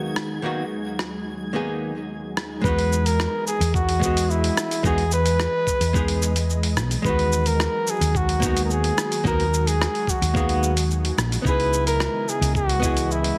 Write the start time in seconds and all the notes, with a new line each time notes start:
Already playing: D#2 D#3 F#3 G#3 A#3 B3 D#4 F#4 G#4 G#6
0.16 cross-stick
0.42 D#3 A#3 B3 D#4 F#4
0.99 cross-stick
1.53 D#3 A#3 B3 D#4 G#4
2.37 cross-stick
2.61 E2 E3 G#3 B3 G#4 B4 D#5, kick, cabasa
2.66 D#4 F#4
2.79 open hi-hat
2.93 cabasa
3.06 A#4, open hi-hat, cabasa
3.20 cross-stick, cabasa
3.47 G#4, cabasa
3.60 E2, open hi-hat, cabasa
3.74 F#4, kick, cabasa
3.89 open hi-hat
3.99 G#3 B3, kick, cabasa
4.04 F#4 D#5
4.17 open hi-hat, cabasa
4.30 E4, cabasa
4.44 open hi-hat
4.57 cross-stick, cabasa
4.71 open hi-hat, cabasa
4.83 E2 G#3 B3 D#4 F#4 G#4, kick, cabasa
4.98 open hi-hat
5.12 B4, cabasa
5.26 open hi-hat, cabasa
5.40 cross-stick, cabasa
5.67 kick, cabasa
5.80 E2, open hi-hat, cabasa
5.93 G#3 B3 D#4 G#4, kick, cabasa
6.08 open hi-hat
6.22 cabasa
6.36 open hi-hat, cabasa
6.50 cabasa
6.63 open hi-hat
6.76 B1, cross-stick, cabasa
6.91 open hi-hat, cabasa
7.02 D#2 D#3 F#3 G#3 B3 F#4 B4, kick, cabasa
7.07 D#4 F#4
7.19 open hi-hat
7.33 cabasa
7.46 A#4, open hi-hat, cabasa
7.60 cross-stick, cabasa
7.87 G#4, cabasa
8.01 D#2, open hi-hat, cabasa
8.15 F#4, kick, cabasa
8.29 open hi-hat
8.40 A#3 B3, kick, cabasa
8.44 D#4 F#4
8.57 open hi-hat, cabasa
8.65 A#4
8.70 G#4, cabasa
8.84 open hi-hat
8.98 cross-stick, cabasa
9.12 open hi-hat, cabasa
9.24 D#2 A#3 B3 D#4 F#4 A#4, kick, cabasa
9.40 open hi-hat
9.54 cabasa
9.67 G#4, open hi-hat, cabasa
9.82 cross-stick, cabasa
9.95 open hi-hat
10.07 F#4, kick, cabasa
10.22 D#2, open hi-hat, cabasa
10.34 A#3 B3 D#4 G#4, kick, cabasa
10.49 open hi-hat
10.63 cabasa
10.77 open hi-hat, cabasa
10.91 cabasa
11.05 open hi-hat
11.18 A#1, cross-stick, cabasa
11.32 open hi-hat, cabasa
11.42 C#2 C#3 E3 B3 D#4 B4 D#5, kick
11.46 E4 G#4, cabasa
11.60 open hi-hat
11.73 cabasa
11.87 A#4, open hi-hat, cabasa
12.00 cross-stick, cabasa
12.29 G#4, cabasa
12.41 C#2, open hi-hat, cabasa
12.55 F#4, kick, cabasa
12.69 open hi-hat
12.80 B3 D#5, kick, cabasa
12.84 E4 G#4
12.97 open hi-hat, cabasa
13.11 E4, cabasa
13.24 open hi-hat